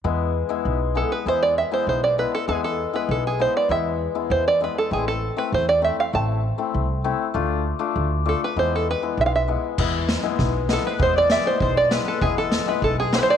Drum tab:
CC |----|----|----|----|
SD |----|----|----|----|
BD |----|----|----|----|

CC |----|----|----|----|
SD |----|----|----|----|
BD |----|----|----|----|

CC |x---|----|----|
SD |-ooo|-o-o|-o-o|
BD |o-o-|o-o-|o-o-|